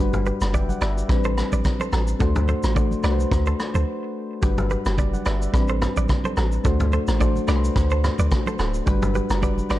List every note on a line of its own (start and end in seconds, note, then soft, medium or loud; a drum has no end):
0.00 0.32 G1 loud
0.00 0.38 G3 medium
0.00 0.38 D4 medium
0.00 0.38 F#4 medium
0.00 0.39 B4 loud
0.13 mid tom medium
0.13 high conga medium
0.13 shaker medium
0.26 0.35 G4 medium
0.26 0.35 B4 medium
0.26 high conga medium
0.26 shaker soft
0.41 0.73 F#1 medium
0.41 cross-stick loud
0.41 shaker medium
0.54 0.63 B4 medium
0.54 0.63 D5 medium
0.54 0.69 E5 medium
0.54 0.68 G5 medium
0.54 kick medium
0.54 low conga medium
0.54 shaker medium
0.69 0.81 D5 medium
0.69 0.81 F#5 medium
0.69 high conga medium
0.69 shaker medium
0.81 1.03 G1 loud
0.81 0.91 B4 medium
0.81 0.90 D5 medium
0.81 0.96 E5 medium
0.81 cross-stick medium
0.81 shaker medium
0.97 1.10 B4 medium
0.97 1.23 D5 medium
0.97 shaker medium
1.08 1.43 A1 loud
1.08 1.98 G3 medium
1.08 1.99 C4 medium
1.08 1.99 D4 medium
1.08 2.00 B4 loud
1.08 kick loud
1.08 cross-stick medium
1.08 shaker medium
1.24 1.33 A4 medium
1.24 1.32 C5 medium
1.24 shaker medium
1.38 cross-stick medium
1.38 shaker medium
1.52 1.62 A1 medium
1.52 1.60 B4 medium
1.52 1.60 D5 medium
1.52 high conga medium
1.52 shaker loud
1.64 kick medium
1.64 cross-stick medium
1.64 low conga medium
1.64 shaker medium
1.80 1.88 A4 medium
1.80 1.88 C5 medium
1.80 high conga medium
1.80 shaker medium
1.92 2.14 A1 medium
1.92 2.02 F#4 medium
1.92 2.02 A4 medium
1.92 cross-stick medium
1.92 shaker medium
2.08 shaker medium
2.19 2.54 D2 loud
2.19 2.60 A3 medium
2.19 2.60 D4 medium
2.19 2.61 F#4 medium
2.19 2.30 F#4 medium
2.19 2.29 A4 medium
2.19 2.61 C5 loud
2.19 kick loud
2.19 low conga medium
2.19 shaker medium
2.35 mid tom medium
2.35 high conga medium
2.35 shaker medium
2.48 2.58 A4 medium
2.48 2.57 C5 medium
2.48 high conga medium
2.48 shaker soft
2.63 2.95 A1 medium
2.63 cross-stick medium
2.63 shaker medium
2.75 2.96 A3 medium
2.75 2.96 D4 medium
2.75 2.96 F#4 medium
2.75 2.85 A4 medium
2.75 2.97 C5 medium
2.75 2.85 D5 medium
2.75 kick medium
2.75 low conga medium
2.75 shaker medium
2.91 high conga medium
2.91 shaker medium
3.03 3.25 C2 loud
3.03 3.81 A3 medium
3.03 3.82 D4 medium
3.03 3.82 F#4 medium
3.03 3.13 B4 medium
3.03 3.12 B4 medium
3.03 3.13 D5 medium
3.03 cross-stick medium
3.03 shaker medium
3.12 3.86 C5 loud
3.19 high conga soft
3.19 shaker medium
3.31 3.53 D2 loud
3.31 kick loud
3.31 cross-stick medium
3.31 shaker medium
3.46 3.55 A4 medium
3.46 3.54 C5 medium
3.46 shaker medium
3.60 cross-stick medium
3.60 shaker soft
3.74 3.84 D2 medium
3.74 3.82 A4 medium
3.74 3.82 C5 medium
3.74 high conga medium
3.74 shaker loud
4.42 4.76 G1 loud
4.42 4.82 G3 medium
4.42 4.82 D4 medium
4.42 4.52 D4 medium
4.42 4.71 F#4 medium
4.42 4.51 G4 medium
4.42 4.71 B4 loud
4.42 kick loud
4.42 shaker medium
4.58 mid tom medium
4.58 high conga medium
4.58 shaker soft
4.70 4.80 G4 medium
4.70 4.79 B4 medium
4.70 high conga medium
4.70 shaker soft
4.85 5.17 F#1 loud
4.85 4.98 G4 medium
4.85 4.98 B4 medium
4.85 cross-stick loud
4.85 shaker medium
4.98 5.13 B4 medium
4.98 5.08 B4 medium
4.98 5.13 D5 medium
4.98 5.07 D5 medium
4.98 kick medium
4.98 low conga medium
4.98 shaker medium
5.13 5.26 D5 medium
5.13 5.25 F#5 medium
5.13 high conga medium
5.13 shaker medium
5.25 5.48 G1 loud
5.25 5.35 B4 medium
5.25 5.35 D5 medium
5.25 5.41 E5 medium
5.25 cross-stick medium
5.25 shaker medium
5.41 5.54 B4 medium
5.41 5.68 D5 medium
5.41 shaker medium
5.52 5.87 A1 loud
5.52 6.43 G3 medium
5.52 6.43 C4 medium
5.52 6.43 D4 medium
5.52 6.44 B4 loud
5.52 kick loud
5.52 cross-stick medium
5.52 shaker medium
5.68 5.77 A4 medium
5.68 5.76 C5 medium
5.68 shaker medium
5.82 cross-stick medium
5.82 mid tom medium
5.82 shaker medium
5.97 6.07 A1 medium
5.97 6.05 B4 medium
5.97 6.04 D5 medium
5.97 high conga medium
5.97 shaker loud
6.09 kick medium
6.09 cross-stick medium
6.09 low conga medium
6.09 shaker medium
6.24 6.33 A4 medium
6.24 6.32 C5 medium
6.24 high conga medium
6.24 shaker medium
6.37 6.59 A1 medium
6.37 6.47 F#4 medium
6.37 6.46 A4 medium
6.37 cross-stick medium
6.37 shaker medium
6.52 shaker medium
6.64 6.98 D2 loud
6.64 7.04 A3 medium
6.64 7.05 D4 medium
6.64 7.05 F#4 medium
6.64 6.74 F#4 medium
6.64 6.74 A4 medium
6.64 7.05 C5 loud
6.64 kick loud
6.64 shaker medium
6.80 mid tom medium
6.80 high conga medium
6.80 shaker medium
6.92 7.02 A4 medium
6.92 7.02 C5 medium
6.92 high conga medium
6.92 shaker soft
7.07 7.39 A1 medium
7.07 cross-stick loud
7.07 shaker medium
7.19 7.40 A3 medium
7.19 7.41 D4 medium
7.19 7.41 F#4 medium
7.19 7.30 A4 medium
7.19 7.41 C5 loud
7.19 7.29 D5 medium
7.19 kick medium
7.19 low conga medium
7.19 shaker medium
7.36 high conga medium
7.36 shaker medium
7.47 7.70 C2 loud
7.47 8.26 A3 medium
7.47 8.26 D4 medium
7.47 8.27 F#4 medium
7.47 7.58 B4 medium
7.47 7.56 B4 medium
7.47 7.57 D5 medium
7.47 cross-stick medium
7.47 shaker medium
7.56 8.30 C5 loud
7.64 shaker medium
7.76 8.09 D2 medium
7.76 kick loud
7.76 cross-stick medium
7.76 shaker medium
7.90 7.99 A4 medium
7.90 7.99 C5 medium
7.90 shaker soft
8.04 cross-stick medium
8.04 mid tom medium
8.04 shaker medium
8.19 8.29 D2 medium
8.19 8.27 B4 medium
8.19 8.26 D5 medium
8.19 high conga medium
8.19 shaker loud
8.31 kick medium
8.31 cross-stick medium
8.31 low conga medium
8.31 shaker medium
8.46 8.55 A4 medium
8.46 8.54 C5 medium
8.46 high conga medium
8.46 shaker medium
8.59 8.81 D1 medium
8.59 8.69 F#4 medium
8.59 8.68 A4 medium
8.59 cross-stick medium
8.59 shaker medium
8.74 shaker medium
8.86 9.21 G1 loud
8.86 9.26 G3 medium
8.86 9.27 D4 medium
8.86 8.96 D4 medium
8.86 9.27 F#4 medium
8.86 8.96 G4 medium
8.86 9.28 B4 loud
8.86 kick loud
8.86 shaker medium
9.02 mid tom medium
9.02 high conga medium
9.02 shaker medium
9.15 9.24 G4 medium
9.15 9.24 B4 medium
9.15 high conga medium
9.15 shaker soft
9.30 9.61 F#1 medium
9.30 cross-stick loud
9.30 shaker medium
9.41 9.62 G3 medium
9.41 9.63 D4 medium
9.41 9.63 F#4 medium
9.41 9.64 B4 loud
9.41 9.52 B4 medium
9.41 9.51 D5 medium
9.41 kick medium
9.41 low conga medium
9.41 shaker medium
9.58 high conga medium
9.58 shaker medium
9.69 9.79 G1 loud
9.69 9.79 G3 medium
9.69 9.79 D4 medium
9.69 9.79 F#4 medium
9.69 9.79 B4 loud
9.69 9.79 B4 medium
9.69 9.79 D5 medium
9.69 cross-stick medium
9.69 shaker medium